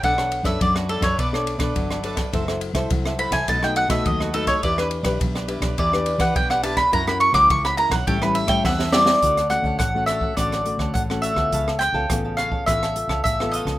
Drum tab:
RD |x-xxx-xxx-xxx-xx|x-xxx-xxx-xxx-xx|x-xxx-xxx-xxx-xx|x-xxx-xxx-xx----|
HH |----------------|----------------|----------------|----------------|
SD |-r-r-r-r-r-r-r-r|-r-r-r-r-r-r-r-r|-r-r-r-r-r-r-r-r|-r-r-r-r-r-roooo|
BD |o--oo--oo--oo--o|o--oo--oo--oo--o|o--oo--oo--oo--o|o--oo--oo--oo---|

RD |----------------|----------------|
HH |xxx-x-x-xxx-x-x-|x-x-x-x-xxx-x-xx|
SD |-rr-r-r-rr-r-r-r|-rr-r-r-rr-r-r-r|
BD |o--oo--oo--oo--o|o--oo--oo--oo--o|